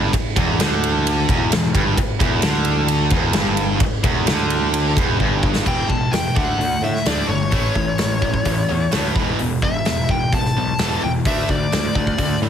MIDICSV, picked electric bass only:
0, 0, Header, 1, 3, 480
1, 0, Start_track
1, 0, Tempo, 464037
1, 132, Time_signature, 4, 2, 24, 8
1, 12922, End_track
2, 0, Start_track
2, 0, Title_t, "Picked electric bass"
2, 0, Program_c, 0, 34
2, 0, Note_on_c, 0, 31, 93
2, 117, Note_off_c, 0, 31, 0
2, 379, Note_on_c, 0, 28, 92
2, 597, Note_off_c, 0, 28, 0
2, 612, Note_on_c, 0, 38, 96
2, 1286, Note_off_c, 0, 38, 0
2, 1336, Note_on_c, 0, 28, 93
2, 1553, Note_off_c, 0, 28, 0
2, 1575, Note_on_c, 0, 28, 81
2, 1792, Note_off_c, 0, 28, 0
2, 1807, Note_on_c, 0, 31, 87
2, 2028, Note_off_c, 0, 31, 0
2, 2279, Note_on_c, 0, 28, 98
2, 2502, Note_off_c, 0, 28, 0
2, 2529, Note_on_c, 0, 38, 89
2, 3200, Note_off_c, 0, 38, 0
2, 3226, Note_on_c, 0, 28, 100
2, 3453, Note_off_c, 0, 28, 0
2, 3471, Note_on_c, 0, 31, 97
2, 3918, Note_off_c, 0, 31, 0
2, 4178, Note_on_c, 0, 28, 90
2, 4405, Note_off_c, 0, 28, 0
2, 4411, Note_on_c, 0, 38, 93
2, 5099, Note_off_c, 0, 38, 0
2, 5145, Note_on_c, 0, 28, 89
2, 5370, Note_off_c, 0, 28, 0
2, 5386, Note_on_c, 0, 31, 82
2, 5834, Note_off_c, 0, 31, 0
2, 5858, Note_on_c, 0, 28, 79
2, 6019, Note_off_c, 0, 28, 0
2, 6096, Note_on_c, 0, 28, 78
2, 6257, Note_off_c, 0, 28, 0
2, 6326, Note_on_c, 0, 28, 84
2, 6490, Note_off_c, 0, 28, 0
2, 6582, Note_on_c, 0, 38, 79
2, 6742, Note_off_c, 0, 38, 0
2, 6812, Note_on_c, 0, 38, 82
2, 6975, Note_off_c, 0, 38, 0
2, 7053, Note_on_c, 0, 45, 90
2, 7216, Note_off_c, 0, 45, 0
2, 7305, Note_on_c, 0, 38, 83
2, 7464, Note_off_c, 0, 38, 0
2, 7532, Note_on_c, 0, 31, 76
2, 7783, Note_off_c, 0, 31, 0
2, 7783, Note_on_c, 0, 33, 83
2, 7943, Note_off_c, 0, 33, 0
2, 8026, Note_on_c, 0, 33, 89
2, 8185, Note_off_c, 0, 33, 0
2, 8275, Note_on_c, 0, 33, 86
2, 8432, Note_off_c, 0, 33, 0
2, 8505, Note_on_c, 0, 33, 81
2, 8665, Note_off_c, 0, 33, 0
2, 8746, Note_on_c, 0, 33, 84
2, 8906, Note_off_c, 0, 33, 0
2, 9010, Note_on_c, 0, 40, 88
2, 9163, Note_off_c, 0, 40, 0
2, 9250, Note_on_c, 0, 38, 81
2, 9402, Note_off_c, 0, 38, 0
2, 9472, Note_on_c, 0, 28, 81
2, 9631, Note_off_c, 0, 28, 0
2, 9745, Note_on_c, 0, 28, 81
2, 9893, Note_off_c, 0, 28, 0
2, 9957, Note_on_c, 0, 28, 88
2, 10115, Note_off_c, 0, 28, 0
2, 10223, Note_on_c, 0, 28, 90
2, 10373, Note_off_c, 0, 28, 0
2, 10445, Note_on_c, 0, 28, 84
2, 10601, Note_off_c, 0, 28, 0
2, 10681, Note_on_c, 0, 28, 80
2, 10839, Note_off_c, 0, 28, 0
2, 10931, Note_on_c, 0, 35, 94
2, 11086, Note_off_c, 0, 35, 0
2, 11173, Note_on_c, 0, 28, 80
2, 11327, Note_off_c, 0, 28, 0
2, 11415, Note_on_c, 0, 28, 81
2, 11569, Note_off_c, 0, 28, 0
2, 11647, Note_on_c, 0, 38, 84
2, 11804, Note_off_c, 0, 38, 0
2, 11886, Note_on_c, 0, 38, 84
2, 12044, Note_off_c, 0, 38, 0
2, 12130, Note_on_c, 0, 38, 88
2, 12287, Note_off_c, 0, 38, 0
2, 12366, Note_on_c, 0, 38, 81
2, 12525, Note_off_c, 0, 38, 0
2, 12607, Note_on_c, 0, 38, 80
2, 12766, Note_off_c, 0, 38, 0
2, 12846, Note_on_c, 0, 45, 88
2, 12922, Note_off_c, 0, 45, 0
2, 12922, End_track
3, 0, Start_track
3, 0, Title_t, "Muted picked electric bass strokes"
3, 143, Note_on_c, 9, 29, 41
3, 246, Note_off_c, 9, 29, 0
3, 2052, Note_on_c, 9, 29, 40
3, 2155, Note_off_c, 9, 29, 0
3, 3935, Note_on_c, 9, 29, 40
3, 4038, Note_off_c, 9, 29, 0
3, 12922, End_track
0, 0, End_of_file